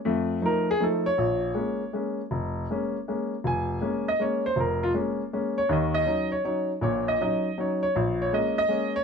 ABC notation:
X:1
M:3/4
L:1/8
Q:"Swing" 1/4=160
K:Bbm
V:1 name="Grand piano"
z2 B A =A d- | d4 z2 | z6 | a3 e d c |
B F z3 d | e e2 d d z | d e e2 d d | z d e e2 d |]
V:2 name="Grand piano"
[F,,=A,]2 [F,A,E] z [F,A,E] z | B,,,2 [A,B,D] z [A,B,D] z | F,,,2 [A,B,D] z [A,B,D] z | F,,,2 [A,B,D] z [A,B,D] z |
F,,,2 [A,B,D] z [A,B,D] z | [E,,E,]2 [G,DE] z [G,DE] z | [B,,,B,,]2 [G,DE] z [G,DE] z | B,,,2 [A,B,D] z [A,B,D] z |]